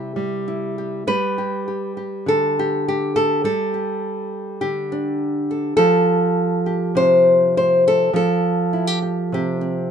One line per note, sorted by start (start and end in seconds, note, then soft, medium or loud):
0.00 1.04 C3 medium
0.00 0.15 G3 medium
0.00 0.47 E4 soft
0.00 0.77 G4 soft
0.00 1.07 C5 medium
0.16 1.06 G3 medium
0.48 1.04 E4 soft
0.78 1.04 G4 soft
1.07 3.44 G3 medium
1.07 2.26 B4 loud
1.38 1.67 G4 soft
1.68 1.97 G4 soft
1.97 2.59 G4 soft
2.26 3.44 D3 medium
2.26 3.15 A4 medium
2.59 2.87 G4 medium
2.88 3.73 G4 medium
3.16 3.44 A4 medium
3.44 8.13 G3 medium
3.44 5.20 A4 medium
3.74 4.61 G4 soft
4.61 5.78 D3 medium
4.61 5.78 G4 medium
4.92 5.76 D4 medium
5.51 5.76 A4 soft
5.77 8.09 F3 medium
5.77 6.95 A4 loud
6.66 8.09 G4 soft
6.95 8.09 C3 medium
6.95 7.55 C5 loud
7.57 7.85 C5 medium
7.88 8.15 A4 loud
8.13 9.91 F3 medium
8.13 9.91 A4 loud
8.73 8.87 E4 soft
8.87 9.01 G4 soft
9.02 9.32 G4 soft
9.32 9.91 C3 medium
9.32 9.91 G4 medium
9.61 9.91 C4 soft